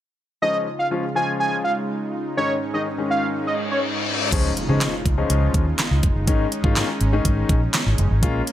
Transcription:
0.42 C#3 F3 G#3 C#4 D#4 F4 D#5
0.79 F5
0.91 F3 G#3 C#4 F4
1.15 F3 G#3 C#4 F4 G#5
1.40 G#5
1.64 F5
2.37 G#2 D#3 G#3 C#4 D#4 C#5
2.74 D#3 G#3 C#4 D#4 D#5
2.98 D#3 G#3 C#4 D#4
3.11 F5
3.35 reverse cymbal
3.47 D#5
3.71 C#5
4.32 C#2 C#3 F3 G#3 C#4 D#4 F4, kick, closed hi-hat, crash, impact
4.57 closed hi-hat
4.69 C#3 F3 G#3 C#4 D#4
4.81 snare, clap, closed hi-hat
5.05 C#2, kick, closed hi-hat
5.18 F3 G#3 C#4 D#4
5.30 C#2, closed hi-hat
5.54 D#2, kick, closed hi-hat
5.79 snare, clap, closed hi-hat
5.91 C#2
6.03 F1, kick, closed hi-hat
6.16 F#1
6.27 G#1 D#3 G#3 C#4 D#4, kick, closed hi-hat
6.52 closed hi-hat
6.64 G#2 D#3 G#3 C#4 F4, kick
6.76 snare, clap, closed hi-hat
7.01 G#1, closed hi-hat
7.13 D#3 G#3 C#4 D#4
7.25 G#1, kick, closed hi-hat
7.49 A#1, kick, closed hi-hat
7.74 snare, clap, closed hi-hat
7.86 G#1
7.98 F#1, closed hi-hat
8.11 G#1
8.22 A#1 G#3 A#3 C#4 F4, kick, closed hi-hat
8.47 closed hi-hat

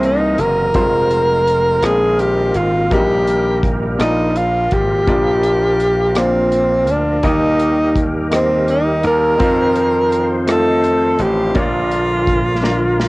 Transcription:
Already playing: C2 C3 E3 A#3 C4 E4 G#4 A#4 C5 D#5
0.03 D#4, closed hi-hat
0.38 F#1 A#4, closed hi-hat
0.74 F1 C3 F3 G3 G#3 C4 F4 C5, kick, closed hi-hat
0.81 G#3
1.10 closed hi-hat
1.47 closed hi-hat
1.82 A#1 A#2 D#3 G#3 A#3 C4 D#4 G#4 A#4, cross-stick, closed hi-hat
2.19 G4, closed hi-hat
2.54 G#1 F4, closed hi-hat
2.90 A#1 A#2 F#3 G3 A#3 D#4 G4 A#4, kick, closed hi-hat
2.97 G3
3.27 closed hi-hat
3.63 kick, cross-stick, closed hi-hat
3.99 A#1 A#2 F3 A#3 D#4 F4 D5, cross-stick, closed hi-hat
4.36 F4, closed hi-hat
4.71 G#1 G4, kick, closed hi-hat
5.07 A#1 A#3 D4 F4 D5, kick, closed hi-hat
5.43 closed hi-hat
5.80 closed hi-hat
6.15 A#2 A#3 C4 D4 F4 F5, cross-stick, closed hi-hat
6.52 closed hi-hat
6.87 D2 D4, closed hi-hat
7.23 D#2 D#3 G3 A#3 D#4 G4 A#4 D#5, kick, closed hi-hat
7.60 closed hi-hat
7.96 kick, cross-stick, closed hi-hat
8.31 A#3 C4 D#4 G4 D#5, cross-stick, closed hi-hat
8.68 D#4, closed hi-hat
9.03 D#2 A#4, closed hi-hat
9.39 F2 D#3 F3 C4 D#4 F4 C5, kick, closed hi-hat
9.76 closed hi-hat
10.12 closed hi-hat
10.47 A3 D#4 F4 D#5, cross-stick, closed hi-hat
10.51 A4
10.84 closed hi-hat
11.19 A1 G4, closed hi-hat
11.54 A#1 A#2 D3 F3 A#3 D4 F4 A#4 C#5, kick, closed hi-hat
11.62 D5
11.91 closed hi-hat
12.27 kick, cross-stick, closed hi-hat
12.62 A#3 D4 F4 A#4, snare
13.00 snare

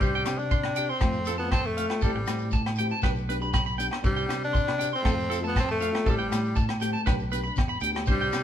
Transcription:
0.00 C2 G3 C4 D4 G4 C5, kick, shekere
0.15 G5
0.25 C3 C4 D4 G4, cross-stick, closed hi-hat, low agogo, shekere
0.39 D4, shekere
0.51 C6, kick, shekere
0.63 cross-stick, low agogo
0.76 D4 G4 G5, closed hi-hat, shekere
0.89 C4 C6, shekere
1.00 F2 A3 C4 F4, muted clean electric guitar stroke, kick, cross-stick, low agogo, shekere
1.12 shekere
1.25 A3 C4 F4 A4, closed hi-hat, shekere
1.38 B3 C4 F4 A5, shekere
1.51 C4 A5, kick, cross-stick, low agogo, shekere
1.65 A3, shekere
1.77 A3 C4 F4 F5, closed hi-hat
1.89 C4 F4, cross-stick, low agogo
2.01 A1 E3 G3 A3 C4 G4 A4, kick, shekere
2.16 muted clean electric guitar stroke
2.26 A2 E3 A3 C4 G4, cross-stick, closed hi-hat, low agogo, shekere
2.38 shekere
2.51 A5, kick, shekere
2.66 cross-stick, low agogo
2.76 E3 A3 G5, closed hi-hat, shekere
2.80 C4 G4
2.90 A5, shekere
3.02 B1 D4 G4 B4, muted nylon-string guitar stroke, kick, cross-stick, low agogo, shekere
3.16 shekere
3.28 B3 D4 G4 B4, closed hi-hat
3.40 D4 G4 B5, shekere
3.53 B5, kick, cross-stick, low agogo, shekere
3.66 B5, shekere
3.78 B3 D4 G4 G5, closed hi-hat, shekere
3.91 D4, cross-stick, low agogo
4.02 C2 G3 C4 D4 G4, muted clean electric guitar stroke, kick, shekere
4.16 G5
4.26 C3 C4 D4 G4, low agogo
4.30 cross-stick, closed hi-hat, shekere
4.43 D4, shekere
4.53 C6, kick, shekere
4.68 cross-stick, low agogo
4.78 C4 D4 G4 G5, closed hi-hat, shekere
4.93 C4 C6, shekere
5.02 F2 F3 A3 C4 F4 A4, kick, cross-stick, low agogo
5.08 shekere
5.20 shekere
5.29 F3 A3 C4 F4 A4, closed hi-hat, shekere
5.40 A3 C4 F4 A5, shekere
5.47 B3
5.56 C4 A5, kick, cross-stick, low agogo, shekere
5.69 A3 A5, shekere
5.79 F3 A3 C4 F4 F5, closed hi-hat, shekere
5.92 A3 F4, muted nylon-string guitar stroke, cross-stick, low agogo
6.04 A1 E3 A3 C4 G4 A4, kick, shekere
6.10 G3
6.19 G5, shekere
6.29 A2 E3 A3 G4, muted nylon-string guitar stroke, cross-stick, closed hi-hat, low agogo, shekere
6.45 shekere
6.56 A5, kick, shekere
6.69 cross-stick, low agogo, shekere
6.80 A3 C4 G4 G5, muted nylon-string guitar stroke, closed hi-hat, shekere
6.93 A5, shekere
7.06 B1 D4 G4 B4, muted nylon-string guitar stroke, kick, cross-stick, low agogo, shekere
7.20 shekere
7.32 B3 D4 G4 B4, closed hi-hat, shekere
7.44 D4 B5, shekere
7.56 E2, kick, cross-stick, low agogo, shekere
7.68 B5, shekere
7.80 D2 B3 D4 G4 G5, closed hi-hat, shekere
7.94 D4 G4, cross-stick, low agogo, shekere
8.06 C2 C4 D4 G4 C5, kick, shekere
8.11 G3
8.21 G5
8.32 C3 C4 D4 G4, cross-stick, closed hi-hat, low agogo, shekere

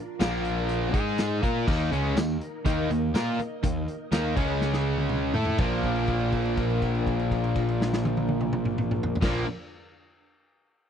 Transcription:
Already playing: D4 F4 A#4 D5
0.20 A#1 A#2 F3 A#3, snare, closed hi-hat, tambourine
0.45 closed hi-hat
0.69 closed hi-hat
0.93 G#2 G#3 D#4 G#4 D#5, kick, closed hi-hat
1.18 snare, closed hi-hat, tambourine
1.42 A#2 A#3 F4 A#4, kick, closed hi-hat
1.67 D#2 D#3 A#3 D#4 A#4 D#5, kick, crash
1.91 C#2 C#3 G#3 C#4, closed hi-hat
2.16 D#2 D#3 A#3, snare, closed hi-hat, tambourine
2.41 closed hi-hat
2.65 D#2 D#3 A#3 D#4, kick, closed hi-hat
2.90 D#2 D#3 A#3, closed hi-hat
3.14 A#2 A#3 F4 A#4, snare, closed hi-hat, tambourine
3.39 muted overdriven electric guitar stroke, muted distorted electric guitar stroke, muted picked electric bass stroke, closed hi-hat
3.64 D#2 D#3 A#3, kick, closed hi-hat
3.88 closed hi-hat
4.12 D#2 D#3 A#3 D#4, snare, closed hi-hat, tambourine
4.36 C#2 C#3 G#3 C#4 G#4 C#5, kick, crash
4.61 snare
4.73 snare
4.98 high tom
5.09 mid tom
5.34 A2 A3 E4 A4, floor tom
5.45 floor tom
5.58 A#1 A#2 F3 A#3 D4 D#4 F#4, kick, crash
5.62 F4
5.75 D4 F4 A#4 D5
5.83 kick, crash
5.96 crash
6.07 kick, crash
6.20 crash
6.32 kick, crash
6.45 crash
6.57 kick, crash
6.70 crash
6.82 kick, crash
6.95 crash
7.07 kick, crash
7.19 crash
7.31 kick, crash
7.44 crash
7.56 kick, crash
7.68 crash
7.82 snare
7.93 snare
8.05 high tom
8.17 high tom
8.29 high tom
8.41 mid tom
8.53 mid tom
8.65 mid tom
8.78 mid tom
8.91 mid tom
9.03 floor tom
9.15 floor tom
9.21 A#1 A#2 F3 A#3 D4 F4 A#4 D5, kick, snare, crash

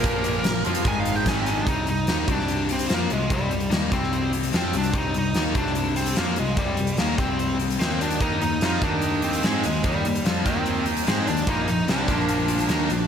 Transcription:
Already playing: F4 G4 A#4 D5
0.03 A#1 A#2 F3 A#3, kick, closed hi-hat
0.24 closed hi-hat
0.44 A#1 A#2 F3, snare, closed hi-hat
0.65 F2 F3 C4 F4, closed hi-hat
0.75 closed hi-hat
0.84 G#1 G#2 D#3 G#3 D#4 G#4 D#5 G#5, kick, closed hi-hat
1.00 F5
1.05 closed hi-hat
1.16 G5
1.26 G#5, kick, snare, closed hi-hat
1.30 C4
1.41 G#5
1.46 closed hi-hat
1.50 D4
1.66 C2 C3 G3 C4 D#4, kick, closed hi-hat
1.87 C2 C3 G3 D#4, closed hi-hat
2.07 D#2 D#3 A#3 D#4, snare, closed hi-hat
2.27 C2 C3 G3 C4, kick, closed hi-hat
2.32 D4
2.39 snare
2.48 closed hi-hat
2.69 C4, closed hi-hat
2.79 closed hi-hat
2.89 F2 F3 C4 F4, snare, closed hi-hat
2.94 A#3
3.10 C2 C3 G3 G#3, closed hi-hat
3.30 C2 C3 G3 C4, kick, closed hi-hat
3.49 C2 C3 G3, closed hi-hat
3.60 closed hi-hat
3.70 D#2 D#3 A#3 D#4, snare, closed hi-hat
3.91 C2 C3 G3 C4, kick, closed hi-hat
4.03 snare
4.13 closed hi-hat
4.33 closed hi-hat
4.43 closed hi-hat
4.53 F2 F3 C4 F4, snare, closed hi-hat
4.73 C2 C3 G3, closed hi-hat
4.78 D4
4.83 closed hi-hat
4.93 C2 C3 G3 C4, kick, closed hi-hat
4.98 D#4
5.14 C2 C3 G3 D#4, closed hi-hat
5.34 D#2 D#3 A#3 D#4, snare, closed hi-hat
5.54 C2 C3 G3 C4 D4, kick, closed hi-hat
5.67 snare
5.75 closed hi-hat
5.96 C4, closed hi-hat
6.06 closed hi-hat
6.16 F2 F3 A#3 C4 F4, snare, closed hi-hat
6.36 C2 C3 G3 G#3, closed hi-hat
6.57 C2 C3 G3 C4, kick, closed hi-hat
6.77 C2 C3 G3, closed hi-hat
6.87 closed hi-hat
6.97 D#2 D#3 A#3 D#4, snare, closed hi-hat
7.17 C2 C3 G3 C4, kick, closed hi-hat
7.39 closed hi-hat
7.60 closed hi-hat
7.70 closed hi-hat
7.80 D#2 D#3 A#3 C4 D#4, snare, closed hi-hat
8.01 D4, closed hi-hat
8.11 closed hi-hat
8.21 D#2 D#3 A#3 D#4, kick, closed hi-hat
8.42 D#2 D#3 A#3 D#4, closed hi-hat
8.61 F2 F3 C4 D#4 F4, snare, closed hi-hat
8.82 D#2 D#3 A#3 D4 D#4, kick, closed hi-hat
9.02 closed hi-hat
9.22 C4, closed hi-hat
9.33 closed hi-hat
9.43 G#2 G#3 D#4 G#4, snare, closed hi-hat
9.63 D#2 D#3 G#3 A#3, closed hi-hat
9.84 D#2 D#3 G3 A#3 D#4, kick, closed hi-hat
10.05 D#2 D#3 A#3, closed hi-hat
10.15 closed hi-hat
10.25 F2 F3 C4 F4, snare, closed hi-hat
10.45 D#2 D#3 A#3 C4 D#4, kick, closed hi-hat
10.66 closed hi-hat
10.86 closed hi-hat
10.97 closed hi-hat
11.06 G#2 G#3 C4 D#4 G#4, snare, closed hi-hat
11.27 D#2 D#3 A#3 D4, closed hi-hat
11.37 closed hi-hat
11.47 A#1 A#2 F3 A#3 D#4, kick, closed hi-hat
11.67 A#1 A#2 F3 D#4, closed hi-hat
11.88 C2 C3 G3 C4 D4, snare, closed hi-hat
12.07 A#1 A#2 F3 A#3, kick, closed hi-hat
12.20 snare
12.29 closed hi-hat
12.48 closed hi-hat
12.59 closed hi-hat
12.68 D#2 D#3 A#3 D#4, snare, closed hi-hat
12.89 A#1 A#2 F3, closed hi-hat

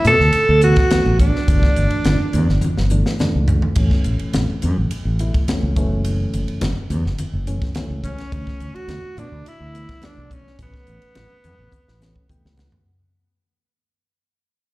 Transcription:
Already playing: B2 E3 A3 C#4
0.05 B2 A4, hi-hat pedal, ride, high conga
0.20 D2, snare
0.33 muted fingered electric bass stroke, hi-hat pedal, ride, muted conga
0.49 D2
0.61 B2 E3 A3 B3 F#4, hi-hat pedal, ride
0.76 kick, snare, ride
0.90 B2 E3 A3 B3, snare, hi-hat pedal, ride, muted conga, high conga
1.06 A1
1.19 D4, kick, hi-hat pedal, ride
1.36 snare
1.48 G1 B2 E3 A3 D4, kick, hi-hat pedal, ride
1.63 kick, snare
1.76 G1, hi-hat pedal, ride, muted conga
1.90 ride
2.04 G1, snare, hi-hat pedal, ride, high conga
2.33 E2, hi-hat pedal, ride, high conga
2.49 G1, snare
2.61 muted fingered electric bass stroke, hi-hat pedal, high tom, muted conga, high conga
2.77 G1, snare
2.90 B2 E3 A3 D4, hi-hat pedal
3.06 snare
3.19 B2 E3 A3 D4, snare, hi-hat pedal, muted conga, high conga
3.35 C#2
3.48 floor tom, hi-hat pedal
3.62 floor tom
3.75 A1 B2 E3 A3 C#4, kick, hi-hat pedal, ride, crash, muted conga
3.91 kick, snare
4.04 A1, hi-hat pedal, ride, muted conga
4.19 muted fingered electric bass stroke, ride
4.33 A1, snare, hi-hat pedal, ride, high conga
4.62 F#2, hi-hat pedal, ride, high conga
4.78 A1
4.91 muted fingered electric bass stroke, hi-hat pedal, ride, muted conga
5.05 A1
5.19 B2 E3 A3 E4, hi-hat pedal, ride
5.34 kick, ride
5.48 B2 E3 A3 C#4, snare, hi-hat pedal, ride, muted conga, high conga
5.63 C#2
5.76 F#1 B2 E3 A3 C#4, kick, hi-hat pedal, ride
6.05 hi-hat pedal, ride, muted conga
6.34 F#1, hi-hat pedal, ride, muted conga
6.48 muted fingered electric bass stroke, ride
6.61 F#1, snare, hi-hat pedal, ride, high conga
6.77 muted fingered electric bass stroke
6.90 E2, hi-hat pedal, ride, high conga
7.05 F#1, snare
7.18 hi-hat pedal, ride, muted conga, high conga
7.33 F#1
7.47 B2 E3 A3 C#4, hi-hat pedal, ride
7.62 kick, snare, ride
7.75 B2 E3 A3 C#4, snare, hi-hat pedal, ride, muted conga, high conga
7.90 C#2
8.04 C#4, kick, hi-hat pedal, ride
8.18 snare, ride
8.32 D2 B2 E3 A3 C#4, kick, hi-hat pedal, ride, muted conga
8.47 kick, snare
8.60 D2, hi-hat pedal, ride, muted conga
8.75 F#4, muted fingered electric bass stroke, ride
8.88 D2, snare, hi-hat pedal, ride, high conga
9.03 muted fingered electric bass stroke
9.17 B2 D4, hi-hat pedal, ride, high conga
9.32 D2
9.45 E4, muted fingered electric bass stroke, hi-hat pedal, ride, muted conga
9.60 D2
9.74 B2 E3 A3 B3, hi-hat pedal, ride
9.89 kick, snare, ride
10.02 B2 E3 A3 D4, snare, hi-hat pedal, ride, muted conga, high conga
10.17 B1
10.31 C#4, kick, hi-hat pedal, ride
10.47 snare
10.58 A1 B2 E3 A3 B3 C#4, kick, hi-hat pedal, ride
10.63 B3
10.74 kick, snare
10.87 A1, hi-hat pedal, ride, muted conga
11.02 muted fingered electric bass stroke, ride
11.15 A1, snare, hi-hat pedal, ride, high conga
11.44 F#2, hi-hat pedal, ride, high conga
11.59 A1
11.72 kick, hi-hat pedal, muted conga, high conga
11.88 A1, snare
12.01 B2 E3 A3 C#4, snare, hi-hat pedal
12.16 kick
12.29 B2 E3 A3 B3 G5, kick, hi-hat pedal, muted conga, high conga
12.45 C#2, snare
12.57 F#5, snare, hi-hat pedal, low conga
12.72 floor tom

